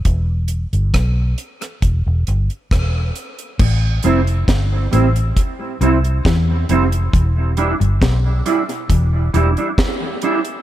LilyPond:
<<
  \new Staff \with { instrumentName = "Clean electric guitar" } { \time 4/4 \key a \minor \tempo 4 = 68 r1 | r8 <g c' e'>16 r8. <g c' e'>16 r8. <g c' e'>16 r8. <g c' e'>16 r16 | r8 <g d' e'>16 r8. <g d' e'>16 r8. <g d' e'>16 <g d' e'>16 r8 <g d' e'>16 r16 | }
  \new Staff \with { instrumentName = "Clean electric guitar" } { \clef bass \time 4/4 \key a \minor r1 | a,8 f,8 g,8 a,8 r8 c8 e8 f,8 | e,8 r16 g,16 b,8 r8 e,8 e,16 r4 r16 | }
  \new Staff \with { instrumentName = "Fingered electric bass" } { \clef bass \time 4/4 \key a \minor e,,8. g,,16 b,,8 r8 e,,16 e,,16 g,,16 r16 e,,8 r8 | a,,8 f,,8 g,,8 a,,8 r8 c,8 e,8 f,,8 | e,,8. g,,16 b,,8 r8 e,,8 e,,16 r4 r16 | }
  \new DrumStaff \with { instrumentName = "Drums" } \drummode { \time 4/4 <hh bd>8 hh16 hh16 <hh bd ss>8 hh16 <hh ss>16 <hh bd>8 hh16 hh16 <hh bd ss>8 hh16 hh16 | <cymc bd>8 hh16 hh16 <hh bd sn>8 hh16 hh16 <hh bd>8 hh16 hh16 <hh bd sn>8 hh16 hh16 | <hh bd>8 hh16 hh16 <hh bd sn>8 hh16 hh16 <hh bd>8 hh16 hh16 <hh bd sn>8 hh16 hh16 | }
>>